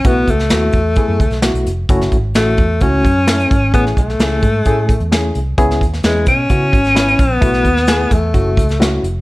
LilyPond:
<<
  \new Staff \with { instrumentName = "Reed electric piano" } { \time 4/4 \key fis \minor \tempo 4 = 130 <a b e' fis'>8 r8 <a b e' fis'>8 r8 <a b e' gis'>8 r8 <a b e' fis'>8 r8 | <a cis' e' fis'>8 r8 <a cis' e' fis'>8 r8 <a cis' e' fis'>8 r8 <a cis' e' a'>8 r8 | <a cis' e' gis'>8 r8 <a cis' e' gis'>8 r8 <a cis' e' gis'>8 r8 <a cis' e' gis'>8 r8 | <b cis' e' gis'>8 r8 <b cis' e' b'>8 r8 <b cis' e' fis'>8 r8 <b cis' e' b'>8 r8 |
<a b e' fis'>8 r8 <a b e' gis'>8 r8 <a cis' e' fis'>8 r8 <a cis' e' fis'>8 r8 | }
  \new Staff \with { instrumentName = "Alto saxophone" } { \time 4/4 \key fis \minor b8 a2. r8 | r4 a4 cis'2 | b8 a2. r8 | r4 gis8 cis'2 b8~ |
b4. a2 r8 | }
  \new Staff \with { instrumentName = "Fingered electric bass" } { \clef bass \time 4/4 \key fis \minor b,,8 cis,8 dis,8 e,8 r16 fis,16 cis,16 b,,8 b,,16 eis,,8 | fis,,8 gis,,8 a,,8 e,8 cis,8 fis,4 gis,,8 | r8 b,,8 cis,8 gis,8 a,8. e,8. bis,,8 | cis,8 dis,8 e,8 b,8 cis8 gis,,4 ais,,8 |
b,,8 dis,4 e,8 fis,,8 cis,4 eis,,8 | }
  \new DrumStaff \with { instrumentName = "Drums" } \drummode { \time 4/4 <hh bd>8 <hh bd>16 sn16 <hh sn>8 <hh bd>8 <hh bd>8 <hh bd>16 <hh sn>16 <hh sn>16 hh16 hh8 | <hh bd>16 sn16 <hh bd>8 <hh sn>8 <hh bd>8 <hh bd>8 <hh bd>8 <hh sn>16 hh16 <hh bd>8 | <hh bd>16 sn16 <hh bd>16 sn16 <hh sn>8 <hh bd>8 <hh bd>8 <hh bd>16 hh16 <hh sn>8 hh8 | <hh bd>16 sn16 <hh bd>16 sn16 <hh sn>8 <hh bd>8 <hh bd>8 <hh bd>16 <hh sn>16 <hh sn>16 hh16 <hh bd>8 |
<hh bd>16 sn16 <hh bd>16 sn16 <hh sn>8 <hh bd>8 <hh bd>8 <hh bd>16 <hh sn>16 <hh sn>8 hh8 | }
>>